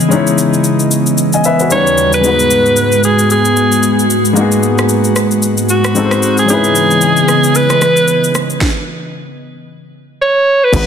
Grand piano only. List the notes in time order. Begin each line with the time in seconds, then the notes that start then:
Already playing: E4 B4
0.09 G#3 C#4 D#4
0.14 E4 C#5
1.34 D#5 G#5
1.45 B4 E5
1.61 F#4 B4
1.70 G3 C#4 D#4 F#4 B4
2.21 G#3 B3 D#4
2.27 F#4 B4
4.33 G#3 A#3 D#4
4.39 B3 F#4 G#4
5.94 G#3 C4 D#4 F#4 A4
6.05 C5
6.46 G#3 C#4 D#4
6.51 E4 B4
10.72 G#3 B3 D#4 F#4 B4